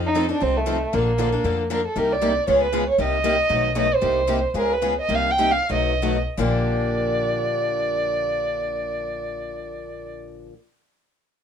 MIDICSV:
0, 0, Header, 1, 5, 480
1, 0, Start_track
1, 0, Key_signature, -2, "major"
1, 0, Tempo, 257843
1, 1722, Time_signature, 4, 2, 24, 8
1, 7965, Tempo, 277264
1, 9885, Tempo, 330579
1, 11325, Tempo, 368550
1, 17913, End_track
2, 0, Start_track
2, 0, Title_t, "Violin"
2, 0, Program_c, 0, 40
2, 115, Note_on_c, 0, 63, 89
2, 542, Note_off_c, 0, 63, 0
2, 586, Note_on_c, 0, 62, 87
2, 796, Note_on_c, 0, 60, 93
2, 824, Note_off_c, 0, 62, 0
2, 1059, Note_on_c, 0, 57, 81
2, 1087, Note_off_c, 0, 60, 0
2, 1752, Note_on_c, 0, 58, 78
2, 1780, Note_off_c, 0, 57, 0
2, 3176, Note_off_c, 0, 58, 0
2, 3211, Note_on_c, 0, 70, 76
2, 3439, Note_off_c, 0, 70, 0
2, 3484, Note_on_c, 0, 69, 70
2, 3689, Note_on_c, 0, 70, 75
2, 3717, Note_off_c, 0, 69, 0
2, 3954, Note_on_c, 0, 74, 87
2, 3982, Note_off_c, 0, 70, 0
2, 4623, Note_off_c, 0, 74, 0
2, 4632, Note_on_c, 0, 73, 84
2, 4868, Note_off_c, 0, 73, 0
2, 4907, Note_on_c, 0, 71, 80
2, 5336, Note_off_c, 0, 71, 0
2, 5383, Note_on_c, 0, 73, 82
2, 5564, Note_off_c, 0, 73, 0
2, 5625, Note_on_c, 0, 75, 94
2, 6959, Note_off_c, 0, 75, 0
2, 7066, Note_on_c, 0, 75, 86
2, 7349, Note_on_c, 0, 72, 91
2, 7377, Note_off_c, 0, 75, 0
2, 8256, Note_off_c, 0, 72, 0
2, 8483, Note_on_c, 0, 70, 90
2, 8742, Note_on_c, 0, 71, 88
2, 8768, Note_off_c, 0, 70, 0
2, 9190, Note_off_c, 0, 71, 0
2, 9231, Note_on_c, 0, 75, 90
2, 9466, Note_on_c, 0, 77, 93
2, 9492, Note_off_c, 0, 75, 0
2, 9748, Note_on_c, 0, 79, 90
2, 9774, Note_off_c, 0, 77, 0
2, 10069, Note_on_c, 0, 77, 92
2, 10091, Note_off_c, 0, 79, 0
2, 10352, Note_off_c, 0, 77, 0
2, 10379, Note_on_c, 0, 75, 86
2, 11066, Note_off_c, 0, 75, 0
2, 11364, Note_on_c, 0, 74, 80
2, 16175, Note_off_c, 0, 74, 0
2, 17913, End_track
3, 0, Start_track
3, 0, Title_t, "Steel-string acoustic guitar"
3, 0, Program_c, 1, 25
3, 6504, Note_on_c, 1, 51, 71
3, 6509, Note_on_c, 1, 59, 66
3, 6518, Note_on_c, 1, 69, 70
3, 6849, Note_off_c, 1, 51, 0
3, 6852, Note_off_c, 1, 59, 0
3, 6856, Note_off_c, 1, 69, 0
3, 6999, Note_on_c, 1, 59, 79
3, 7000, Note_on_c, 1, 51, 84
3, 7004, Note_on_c, 1, 69, 89
3, 7188, Note_off_c, 1, 59, 0
3, 7189, Note_off_c, 1, 51, 0
3, 7191, Note_off_c, 1, 69, 0
3, 10350, Note_on_c, 1, 51, 62
3, 10350, Note_on_c, 1, 59, 65
3, 10357, Note_on_c, 1, 69, 73
3, 10674, Note_off_c, 1, 51, 0
3, 10674, Note_off_c, 1, 59, 0
3, 10677, Note_off_c, 1, 69, 0
3, 10815, Note_on_c, 1, 51, 73
3, 10817, Note_on_c, 1, 59, 82
3, 10827, Note_on_c, 1, 69, 81
3, 11010, Note_off_c, 1, 51, 0
3, 11011, Note_off_c, 1, 59, 0
3, 11016, Note_off_c, 1, 69, 0
3, 17913, End_track
4, 0, Start_track
4, 0, Title_t, "Steel-string acoustic guitar"
4, 0, Program_c, 2, 25
4, 272, Note_on_c, 2, 53, 78
4, 285, Note_on_c, 2, 60, 96
4, 287, Note_on_c, 2, 63, 95
4, 300, Note_on_c, 2, 69, 87
4, 467, Note_off_c, 2, 53, 0
4, 473, Note_off_c, 2, 60, 0
4, 474, Note_off_c, 2, 63, 0
4, 480, Note_off_c, 2, 69, 0
4, 534, Note_on_c, 2, 69, 64
4, 549, Note_on_c, 2, 63, 54
4, 564, Note_on_c, 2, 60, 54
4, 734, Note_off_c, 2, 60, 0
4, 746, Note_off_c, 2, 69, 0
4, 747, Note_off_c, 2, 63, 0
4, 751, Note_on_c, 2, 53, 59
4, 757, Note_on_c, 2, 60, 64
4, 770, Note_on_c, 2, 63, 64
4, 771, Note_on_c, 2, 69, 68
4, 1094, Note_off_c, 2, 53, 0
4, 1097, Note_off_c, 2, 60, 0
4, 1103, Note_off_c, 2, 63, 0
4, 1104, Note_off_c, 2, 69, 0
4, 1228, Note_on_c, 2, 53, 89
4, 1237, Note_on_c, 2, 60, 88
4, 1245, Note_on_c, 2, 63, 85
4, 1249, Note_on_c, 2, 69, 83
4, 1424, Note_off_c, 2, 53, 0
4, 1428, Note_off_c, 2, 60, 0
4, 1432, Note_off_c, 2, 63, 0
4, 1434, Note_off_c, 2, 69, 0
4, 1727, Note_on_c, 2, 50, 64
4, 1731, Note_on_c, 2, 53, 69
4, 1734, Note_on_c, 2, 58, 67
4, 1736, Note_on_c, 2, 62, 64
4, 1740, Note_on_c, 2, 69, 69
4, 2062, Note_off_c, 2, 50, 0
4, 2063, Note_off_c, 2, 53, 0
4, 2065, Note_off_c, 2, 58, 0
4, 2066, Note_off_c, 2, 62, 0
4, 2068, Note_off_c, 2, 69, 0
4, 2202, Note_on_c, 2, 50, 81
4, 2209, Note_on_c, 2, 53, 78
4, 2220, Note_on_c, 2, 58, 86
4, 2221, Note_on_c, 2, 69, 82
4, 2226, Note_on_c, 2, 62, 83
4, 2390, Note_off_c, 2, 50, 0
4, 2394, Note_off_c, 2, 53, 0
4, 2399, Note_off_c, 2, 58, 0
4, 2400, Note_off_c, 2, 69, 0
4, 2403, Note_off_c, 2, 62, 0
4, 2465, Note_on_c, 2, 69, 64
4, 2484, Note_on_c, 2, 62, 54
4, 2500, Note_on_c, 2, 58, 51
4, 2670, Note_off_c, 2, 69, 0
4, 2675, Note_off_c, 2, 58, 0
4, 2680, Note_off_c, 2, 62, 0
4, 2688, Note_on_c, 2, 50, 65
4, 2694, Note_on_c, 2, 53, 61
4, 2697, Note_on_c, 2, 58, 62
4, 2704, Note_on_c, 2, 69, 63
4, 2705, Note_on_c, 2, 62, 64
4, 3022, Note_off_c, 2, 50, 0
4, 3025, Note_off_c, 2, 53, 0
4, 3026, Note_off_c, 2, 58, 0
4, 3030, Note_off_c, 2, 62, 0
4, 3030, Note_off_c, 2, 69, 0
4, 3166, Note_on_c, 2, 50, 84
4, 3167, Note_on_c, 2, 53, 79
4, 3174, Note_on_c, 2, 58, 86
4, 3177, Note_on_c, 2, 62, 85
4, 3182, Note_on_c, 2, 69, 88
4, 3352, Note_off_c, 2, 50, 0
4, 3352, Note_off_c, 2, 53, 0
4, 3356, Note_off_c, 2, 58, 0
4, 3358, Note_off_c, 2, 62, 0
4, 3360, Note_off_c, 2, 69, 0
4, 3642, Note_on_c, 2, 48, 69
4, 3653, Note_on_c, 2, 58, 66
4, 3658, Note_on_c, 2, 55, 64
4, 3664, Note_on_c, 2, 63, 64
4, 3664, Note_on_c, 2, 67, 67
4, 3979, Note_off_c, 2, 48, 0
4, 3984, Note_off_c, 2, 58, 0
4, 3986, Note_off_c, 2, 55, 0
4, 3989, Note_off_c, 2, 67, 0
4, 3990, Note_off_c, 2, 63, 0
4, 4122, Note_on_c, 2, 48, 82
4, 4127, Note_on_c, 2, 55, 86
4, 4138, Note_on_c, 2, 58, 79
4, 4138, Note_on_c, 2, 63, 89
4, 4146, Note_on_c, 2, 67, 89
4, 4310, Note_off_c, 2, 48, 0
4, 4312, Note_off_c, 2, 55, 0
4, 4318, Note_off_c, 2, 58, 0
4, 4318, Note_off_c, 2, 63, 0
4, 4322, Note_off_c, 2, 67, 0
4, 4604, Note_on_c, 2, 49, 62
4, 4614, Note_on_c, 2, 56, 63
4, 4614, Note_on_c, 2, 59, 69
4, 4619, Note_on_c, 2, 65, 64
4, 4626, Note_on_c, 2, 68, 71
4, 4939, Note_off_c, 2, 49, 0
4, 4944, Note_off_c, 2, 56, 0
4, 4944, Note_off_c, 2, 59, 0
4, 4947, Note_off_c, 2, 65, 0
4, 4950, Note_off_c, 2, 68, 0
4, 5072, Note_on_c, 2, 49, 75
4, 5078, Note_on_c, 2, 56, 87
4, 5085, Note_on_c, 2, 59, 80
4, 5091, Note_on_c, 2, 65, 89
4, 5096, Note_on_c, 2, 68, 86
4, 5265, Note_off_c, 2, 49, 0
4, 5268, Note_off_c, 2, 56, 0
4, 5271, Note_off_c, 2, 59, 0
4, 5275, Note_off_c, 2, 65, 0
4, 5277, Note_off_c, 2, 68, 0
4, 5554, Note_on_c, 2, 48, 64
4, 5560, Note_on_c, 2, 55, 66
4, 5561, Note_on_c, 2, 58, 64
4, 5575, Note_on_c, 2, 63, 70
4, 5575, Note_on_c, 2, 67, 77
4, 5894, Note_off_c, 2, 48, 0
4, 5897, Note_off_c, 2, 55, 0
4, 5898, Note_off_c, 2, 58, 0
4, 5905, Note_off_c, 2, 63, 0
4, 5905, Note_off_c, 2, 67, 0
4, 6030, Note_on_c, 2, 48, 82
4, 6034, Note_on_c, 2, 55, 91
4, 6036, Note_on_c, 2, 58, 94
4, 6044, Note_on_c, 2, 63, 82
4, 6053, Note_on_c, 2, 67, 88
4, 6224, Note_off_c, 2, 48, 0
4, 6226, Note_off_c, 2, 55, 0
4, 6227, Note_off_c, 2, 58, 0
4, 6231, Note_off_c, 2, 63, 0
4, 6235, Note_off_c, 2, 67, 0
4, 6502, Note_on_c, 2, 47, 64
4, 6507, Note_on_c, 2, 54, 61
4, 6507, Note_on_c, 2, 57, 63
4, 6519, Note_on_c, 2, 66, 71
4, 6520, Note_on_c, 2, 63, 62
4, 6849, Note_off_c, 2, 47, 0
4, 6851, Note_off_c, 2, 54, 0
4, 6851, Note_off_c, 2, 57, 0
4, 6857, Note_off_c, 2, 63, 0
4, 6857, Note_off_c, 2, 66, 0
4, 6984, Note_on_c, 2, 47, 81
4, 6986, Note_on_c, 2, 54, 77
4, 6995, Note_on_c, 2, 57, 83
4, 6998, Note_on_c, 2, 63, 96
4, 6999, Note_on_c, 2, 66, 77
4, 7181, Note_off_c, 2, 47, 0
4, 7182, Note_off_c, 2, 54, 0
4, 7186, Note_off_c, 2, 57, 0
4, 7188, Note_off_c, 2, 63, 0
4, 7188, Note_off_c, 2, 66, 0
4, 7471, Note_on_c, 2, 48, 67
4, 7476, Note_on_c, 2, 55, 64
4, 7479, Note_on_c, 2, 58, 68
4, 7485, Note_on_c, 2, 67, 66
4, 7486, Note_on_c, 2, 63, 70
4, 7815, Note_off_c, 2, 48, 0
4, 7817, Note_off_c, 2, 55, 0
4, 7819, Note_off_c, 2, 58, 0
4, 7822, Note_off_c, 2, 63, 0
4, 7822, Note_off_c, 2, 67, 0
4, 7955, Note_on_c, 2, 48, 79
4, 7961, Note_on_c, 2, 55, 87
4, 7967, Note_on_c, 2, 58, 86
4, 7972, Note_on_c, 2, 63, 86
4, 7979, Note_on_c, 2, 67, 85
4, 8138, Note_off_c, 2, 48, 0
4, 8141, Note_off_c, 2, 55, 0
4, 8144, Note_off_c, 2, 58, 0
4, 8146, Note_off_c, 2, 63, 0
4, 8150, Note_off_c, 2, 67, 0
4, 8421, Note_on_c, 2, 49, 63
4, 8429, Note_on_c, 2, 56, 64
4, 8431, Note_on_c, 2, 59, 59
4, 8437, Note_on_c, 2, 65, 70
4, 8441, Note_on_c, 2, 68, 71
4, 8748, Note_off_c, 2, 49, 0
4, 8752, Note_off_c, 2, 56, 0
4, 8753, Note_off_c, 2, 59, 0
4, 8757, Note_off_c, 2, 65, 0
4, 8758, Note_off_c, 2, 68, 0
4, 8896, Note_on_c, 2, 49, 74
4, 8904, Note_on_c, 2, 56, 83
4, 8905, Note_on_c, 2, 59, 86
4, 8909, Note_on_c, 2, 68, 86
4, 8912, Note_on_c, 2, 65, 82
4, 9081, Note_off_c, 2, 49, 0
4, 9085, Note_off_c, 2, 56, 0
4, 9086, Note_off_c, 2, 59, 0
4, 9088, Note_off_c, 2, 68, 0
4, 9089, Note_off_c, 2, 65, 0
4, 9363, Note_on_c, 2, 48, 65
4, 9375, Note_on_c, 2, 55, 69
4, 9380, Note_on_c, 2, 63, 63
4, 9381, Note_on_c, 2, 58, 60
4, 9386, Note_on_c, 2, 67, 67
4, 9723, Note_off_c, 2, 48, 0
4, 9729, Note_off_c, 2, 55, 0
4, 9732, Note_off_c, 2, 58, 0
4, 9732, Note_off_c, 2, 63, 0
4, 9735, Note_off_c, 2, 67, 0
4, 9874, Note_on_c, 2, 48, 84
4, 9884, Note_on_c, 2, 55, 74
4, 9886, Note_on_c, 2, 63, 86
4, 9888, Note_on_c, 2, 58, 88
4, 9895, Note_on_c, 2, 67, 91
4, 10053, Note_off_c, 2, 48, 0
4, 10057, Note_off_c, 2, 55, 0
4, 10058, Note_off_c, 2, 63, 0
4, 10059, Note_off_c, 2, 58, 0
4, 10063, Note_off_c, 2, 67, 0
4, 10322, Note_on_c, 2, 54, 59
4, 10324, Note_on_c, 2, 47, 64
4, 10330, Note_on_c, 2, 57, 60
4, 10335, Note_on_c, 2, 63, 71
4, 10338, Note_on_c, 2, 66, 66
4, 10659, Note_off_c, 2, 54, 0
4, 10660, Note_off_c, 2, 47, 0
4, 10664, Note_off_c, 2, 57, 0
4, 10666, Note_off_c, 2, 63, 0
4, 10668, Note_off_c, 2, 66, 0
4, 10801, Note_on_c, 2, 47, 76
4, 10807, Note_on_c, 2, 54, 86
4, 10810, Note_on_c, 2, 57, 79
4, 10818, Note_on_c, 2, 63, 78
4, 10818, Note_on_c, 2, 66, 88
4, 11003, Note_off_c, 2, 47, 0
4, 11006, Note_off_c, 2, 54, 0
4, 11007, Note_off_c, 2, 57, 0
4, 11011, Note_off_c, 2, 63, 0
4, 11011, Note_off_c, 2, 66, 0
4, 11317, Note_on_c, 2, 46, 76
4, 11323, Note_on_c, 2, 50, 77
4, 11333, Note_on_c, 2, 53, 80
4, 11339, Note_on_c, 2, 58, 86
4, 11347, Note_on_c, 2, 62, 77
4, 11355, Note_on_c, 2, 67, 82
4, 16725, Note_off_c, 2, 46, 0
4, 16729, Note_off_c, 2, 50, 0
4, 16739, Note_off_c, 2, 53, 0
4, 16746, Note_off_c, 2, 58, 0
4, 16754, Note_off_c, 2, 62, 0
4, 16761, Note_off_c, 2, 67, 0
4, 17913, End_track
5, 0, Start_track
5, 0, Title_t, "Upright bass"
5, 0, Program_c, 3, 32
5, 0, Note_on_c, 3, 41, 90
5, 569, Note_off_c, 3, 41, 0
5, 778, Note_on_c, 3, 36, 84
5, 1540, Note_off_c, 3, 36, 0
5, 1745, Note_on_c, 3, 34, 89
5, 2503, Note_off_c, 3, 34, 0
5, 2680, Note_on_c, 3, 41, 80
5, 3449, Note_off_c, 3, 41, 0
5, 3645, Note_on_c, 3, 36, 81
5, 4412, Note_off_c, 3, 36, 0
5, 4615, Note_on_c, 3, 37, 83
5, 5377, Note_off_c, 3, 37, 0
5, 5551, Note_on_c, 3, 36, 81
5, 6323, Note_off_c, 3, 36, 0
5, 6512, Note_on_c, 3, 35, 84
5, 7284, Note_off_c, 3, 35, 0
5, 7487, Note_on_c, 3, 36, 87
5, 8243, Note_off_c, 3, 36, 0
5, 8416, Note_on_c, 3, 37, 76
5, 9182, Note_off_c, 3, 37, 0
5, 9362, Note_on_c, 3, 36, 79
5, 10151, Note_off_c, 3, 36, 0
5, 10335, Note_on_c, 3, 35, 81
5, 11128, Note_off_c, 3, 35, 0
5, 11321, Note_on_c, 3, 34, 88
5, 16676, Note_off_c, 3, 34, 0
5, 17913, End_track
0, 0, End_of_file